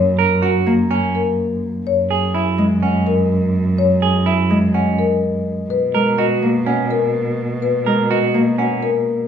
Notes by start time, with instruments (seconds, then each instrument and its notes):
Already playing: cello F#2, harp A#3, marimba C#5
0.19 clean electric guitar A#4
0.42 clean electric guitar F#4, marimba F#5
0.66 harp A#3
0.91 clean electric guitar C#4, marimba G#5
1.15 marimba A#4
1.86 cello F#2, marimba C#5
2.11 clean electric guitar G#4
2.35 clean electric guitar E4, marimba E5
2.58 harp G#3
2.83 clean electric guitar C#4, marimba F#5
3.07 marimba A#4
3.78 marimba C#5
4.02 clean electric guitar G#4
4.26 clean electric guitar E4, marimba E5
4.50 harp G#3
4.74 clean electric guitar C#4, marimba F#5
4.99 marimba A#4
5.70 cello B2, marimba B4
5.94 harp G#3, clean electric guitar A#4
6.18 clean electric guitar F#4, marimba D#5
6.42 harp A#3
6.66 clean electric guitar C#4, marimba F#5
6.91 marimba A#4
7.62 marimba B4
7.86 harp G#3, clean electric guitar A#4
8.11 clean electric guitar F#4, marimba D#5
8.34 harp A#3
8.58 clean electric guitar C#4, marimba F#5
8.83 marimba A#4